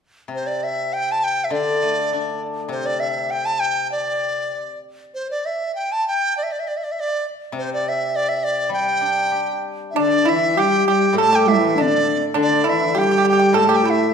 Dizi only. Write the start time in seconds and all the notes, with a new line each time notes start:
0.35 C5
0.47 D5
0.63 E5
0.93 G5
1.11 A5
1.24 G5
1.44 E5
1.52 D5
2.71 C5
2.86 D5
3.00 E5
3.31 G5
3.45 A5
3.60 G5
3.92 D5
5.14 C5
5.31 D5
5.46 E5
5.75 G5
5.92 A5
6.08 G5
6.37 D5
6.43 E5
6.52 D5
6.59 E5
6.68 D5
6.77 E5
6.84 D5
6.92 E5
7.00 D5
7.58 C5
7.73 D5
7.88 E5
8.16 D5
8.29 E5
8.44 D5
8.73 G5
9.90 E5
9.97 D5
10.29 E5
10.59 G5
10.88 G5
11.21 A5
11.35 G5
11.48 E5
11.70 E5
11.81 D5
12.42 D5
12.69 E5
12.98 G5
13.29 G5
13.58 A5
13.76 G5
13.90 E5
14.09 E5